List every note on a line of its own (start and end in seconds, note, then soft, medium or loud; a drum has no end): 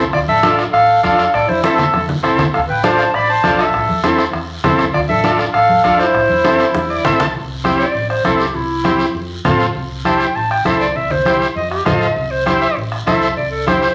0.13 0.26 D2 medium
0.13 0.20 F4 medium
0.13 0.20 D5 loud
0.13 bombo low medium
0.13 bombo rim medium
0.13 high conga soft
0.13 long guiro medium
0.28 0.65 A1 medium
0.28 0.56 A4 medium
0.28 0.57 E5 medium
0.28 high conga medium
0.43 0.64 D4 medium
0.43 0.65 F4 medium
0.43 0.65 A4 medium
0.43 bombo rim medium
0.43 high conga loud
0.43 short guiro medium
0.59 bombo rim medium
0.59 short guiro medium
0.72 0.98 A1 medium
0.72 1.00 A4 medium
0.72 1.01 F5 loud
0.72 bombo rim medium
0.72 high conga soft
0.72 long guiro medium
1.02 1.28 F2 medium
1.02 1.24 D4 medium
1.02 1.25 F4 medium
1.02 1.30 A4 medium
1.02 1.25 A4 medium
1.02 1.31 F5 medium
1.02 bombo low medium
1.02 bombo rim medium
1.02 high conga medium
1.02 short guiro medium
1.18 bombo rim medium
1.18 short guiro medium
1.32 1.46 A1 medium
1.32 1.47 A4 medium
1.32 1.50 D5 loud
1.32 bombo low medium
1.32 bombo rim medium
1.32 high conga soft
1.32 long guiro medium
1.48 1.85 E2 medium
1.48 1.63 E4 medium
1.48 1.62 C5 medium
1.48 high conga medium
1.63 1.84 C4 medium
1.63 1.85 E4 medium
1.63 2.05 A4 medium
1.63 1.85 A4 medium
1.63 2.05 E5 medium
1.63 bombo rim medium
1.63 high conga medium
1.63 short guiro medium
1.78 bombo rim medium
1.78 low conga medium
1.78 short guiro medium
1.93 2.18 E2 medium
1.93 bombo rim medium
1.93 high conga medium
1.93 long guiro medium
2.09 low conga medium
2.23 2.48 C2 medium
2.23 2.44 C4 medium
2.23 2.45 E4 medium
2.23 2.45 A4 loud
2.23 bombo low medium
2.23 bombo rim medium
2.23 short guiro medium
2.38 bombo rim medium
2.38 low conga loud
2.38 short guiro medium
2.54 2.66 D2 medium
2.54 2.60 A4 medium
2.54 2.61 F5 medium
2.54 bombo low medium
2.54 bombo rim medium
2.54 high conga soft
2.54 long guiro medium
2.68 3.05 A1 medium
2.68 2.82 B4 medium
2.68 2.83 G5 medium
2.83 3.05 D4 medium
2.83 3.05 F4 medium
2.83 3.05 A4 medium
2.83 3.12 C5 medium
2.83 3.17 A5 medium
2.83 bombo rim medium
2.83 high conga medium
2.83 short guiro medium
2.98 bombo rim medium
2.98 short guiro medium
3.14 3.38 A1 medium
3.14 3.29 D5 medium
3.14 3.29 B5 loud
3.14 bombo rim medium
3.14 high conga soft
3.14 long guiro medium
3.29 3.57 C5 medium
3.29 3.57 A5 loud
3.43 3.68 B1 medium
3.43 3.65 D4 medium
3.43 3.65 F4 medium
3.43 3.65 A4 medium
3.43 bombo low medium
3.43 bombo rim medium
3.43 high conga medium
3.43 short guiro medium
3.59 4.01 A4 medium
3.59 4.01 E5 medium
3.59 bombo rim medium
3.59 short guiro medium
3.73 3.86 A1 loud
3.73 bombo low medium
3.73 bombo rim medium
3.73 high conga soft
3.73 long guiro medium
3.89 4.25 E2 medium
3.89 high conga medium
4.03 4.25 C4 medium
4.03 4.25 E4 medium
4.03 4.25 A4 medium
4.03 bombo rim medium
4.03 high conga medium
4.03 short guiro medium
4.18 bombo rim medium
4.18 short guiro medium
4.33 4.58 E2 medium
4.33 bombo rim medium
4.33 high conga soft
4.33 long guiro medium
4.64 4.88 C2 medium
4.64 4.85 C4 medium
4.64 4.85 E4 medium
4.64 4.85 A4 loud
4.64 bombo low medium
4.64 bombo rim medium
4.64 high conga medium
4.64 low conga medium
4.64 short guiro medium
4.79 bombo rim medium
4.79 short guiro medium
4.94 5.06 D2 loud
4.94 5.01 F4 medium
4.94 5.00 D5 medium
4.94 bombo low medium
4.94 bombo rim medium
4.94 high conga soft
4.94 long guiro medium
5.09 5.45 A1 medium
5.09 5.37 A4 medium
5.09 5.37 E5 loud
5.09 high conga medium
5.24 5.45 D4 medium
5.24 5.45 F4 medium
5.24 5.45 A4 medium
5.24 bombo rim medium
5.24 high conga medium
5.24 short guiro medium
5.39 bombo rim medium
5.39 short guiro medium
5.53 5.78 A1 loud
5.53 5.82 A4 medium
5.53 5.82 F5 loud
5.53 bombo rim medium
5.53 high conga soft
5.53 long guiro medium
5.69 high conga medium
5.84 6.08 F2 medium
5.84 6.05 D4 medium
5.84 6.06 F4 medium
5.84 6.06 A4 medium
5.84 5.99 A4 medium
5.84 6.00 F5 loud
5.84 bombo low medium
5.84 bombo rim medium
5.84 high conga medium
5.84 short guiro medium
5.99 7.05 E4 medium
5.99 7.04 C5 loud
5.99 bombo rim medium
5.99 short guiro medium
6.14 6.26 A1 loud
6.14 bombo low medium
6.14 bombo rim medium
6.14 high conga soft
6.14 long guiro medium
6.29 6.66 E2 medium
6.29 high conga medium
6.44 6.65 C4 medium
6.44 6.65 E4 medium
6.44 6.66 A4 medium
6.44 bombo rim medium
6.44 high conga loud
6.44 short guiro medium
6.60 bombo rim medium
6.60 short guiro medium
6.75 6.99 E2 medium
6.75 bombo rim medium
6.75 high conga medium
6.75 long guiro medium
6.90 7.04 D5 medium
7.05 7.18 A1 medium
7.05 7.26 C4 medium
7.05 7.26 E4 medium
7.05 7.26 A4 loud
7.05 7.19 E5 medium
7.05 bombo low medium
7.05 bombo rim medium
7.05 low conga medium
7.05 short guiro medium
7.20 7.33 B1 medium
7.20 7.34 A5 medium
7.20 bombo rim medium
7.20 low conga medium
7.20 short guiro medium
7.35 7.83 C2 loud
7.35 bombo low medium
7.35 high conga soft
7.35 long guiro medium
7.64 7.85 C4 medium
7.64 7.86 E4 medium
7.64 7.86 G4 medium
7.64 bombo rim medium
7.64 high conga medium
7.64 short guiro medium
7.79 8.09 D5 medium
7.79 short guiro medium
7.95 8.19 A1 medium
7.95 high conga soft
7.95 long guiro medium
8.10 8.24 C5 medium
8.10 bombo rim medium
8.25 8.49 C2 medium
8.25 8.46 C4 medium
8.25 8.46 E4 medium
8.25 8.41 A4 medium
8.25 8.46 A4 medium
8.25 bombo low medium
8.25 bombo rim medium
8.25 high conga medium
8.25 short guiro medium
8.39 8.57 G4 medium
8.39 short guiro medium
8.55 9.03 C2 loud
8.55 9.14 E4 loud
8.55 bombo low medium
8.55 high conga soft
8.84 9.06 C4 medium
8.84 9.06 E4 medium
8.84 9.06 G4 medium
8.84 bombo rim medium
8.84 high conga medium
8.84 short guiro medium
8.99 short guiro medium
9.15 9.39 F2 medium
9.15 high conga soft
9.15 long guiro medium
9.45 9.69 A2 medium
9.45 9.66 C4 medium
9.45 9.66 F4 medium
9.45 9.67 A4 loud
9.45 bombo low medium
9.45 bombo rim medium
9.45 high conga medium
9.45 low conga medium
9.45 short guiro medium
9.60 short guiro medium
9.75 10.24 C2 loud
9.75 bombo low medium
9.75 high conga soft
9.75 long guiro medium
10.05 10.27 E4 medium
10.05 10.27 G4 medium
10.05 10.27 C5 medium
10.05 10.22 A5 medium
10.05 bombo rim medium
10.05 high conga medium
10.05 short guiro medium
10.20 10.37 G5 medium
10.20 short guiro medium
10.36 10.60 A1 medium
10.36 10.50 A5 medium
10.36 high conga soft
10.36 long guiro medium
10.51 10.65 G5 medium
10.51 bombo rim medium
10.65 10.90 C2 medium
10.65 10.87 E4 medium
10.65 10.87 A4 medium
10.65 10.87 C5 medium
10.65 10.80 E5 medium
10.65 bombo low medium
10.65 bombo rim medium
10.65 high conga medium
10.65 short guiro medium
10.81 10.98 D5 medium
10.81 short guiro medium
10.96 11.44 C2 loud
10.96 11.13 E5 medium
10.96 bombo low medium
10.96 high conga soft
10.96 long guiro medium
11.10 11.41 C5 medium
11.10 low conga medium
11.25 11.47 E4 medium
11.25 11.47 G4 medium
11.25 11.48 C5 medium
11.25 bombo rim medium
11.25 high conga medium
11.25 short guiro medium
11.42 short guiro medium
11.56 11.80 F2 medium
11.56 11.70 D#5 loud
11.56 high conga soft
11.56 long guiro medium
11.71 11.85 G4 medium
11.71 bombo rim medium
11.85 12.10 A2 medium
11.85 12.07 F4 medium
11.85 12.07 A4 medium
11.85 12.07 C5 medium
11.85 12.33 D#5 medium
11.85 bombo low medium
11.85 bombo rim medium
11.85 high conga medium
11.85 low conga medium
11.85 short guiro medium
12.01 short guiro medium
12.16 12.65 C2 loud
12.16 bombo low medium
12.16 high conga soft
12.16 long guiro medium
12.31 12.45 C5 medium
12.46 12.67 E4 medium
12.46 12.68 G4 medium
12.46 12.61 C5 medium
12.46 12.68 C5 medium
12.46 bombo rim medium
12.46 high conga medium
12.46 short guiro medium
12.61 12.76 E5 medium
12.61 short guiro medium
12.77 13.01 A1 loud
12.77 high conga soft
12.77 long guiro medium
12.92 bombo rim medium
13.06 13.31 C2 medium
13.06 13.28 E4 medium
13.06 13.28 A4 medium
13.06 13.28 C5 medium
13.06 13.36 E5 loud
13.06 bombo low medium
13.06 bombo rim medium
13.06 high conga medium
13.06 short guiro medium
13.22 short guiro medium
13.37 13.86 C2 loud
13.37 13.51 D5 medium
13.37 bombo low medium
13.37 high conga soft
13.37 long guiro medium
13.51 13.66 A4 medium
13.66 13.88 E4 medium
13.66 13.88 G4 medium
13.66 13.95 C5 medium
13.66 13.89 C5 medium
13.66 bombo rim medium
13.66 high conga medium
13.66 short guiro medium
13.82 short guiro medium